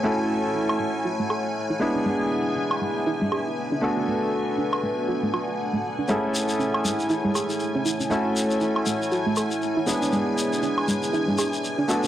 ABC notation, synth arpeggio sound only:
X:1
M:4/4
L:1/16
Q:"Swing 16ths" 1/4=119
K:Emix
V:1 name="Synth arpeggio sound"
A, z3 E z A, z F A, A z2 E z D | G, z3 D z G, z E G, G z2 D z D | A, z3 D z A, z F A, F z2 A, z D | G, z3 C z G, z E G, G z2 C E C |
A, z3 E z A, z F A, A z2 E E D | G, z3 D z G, z E G, G z2 D F D |]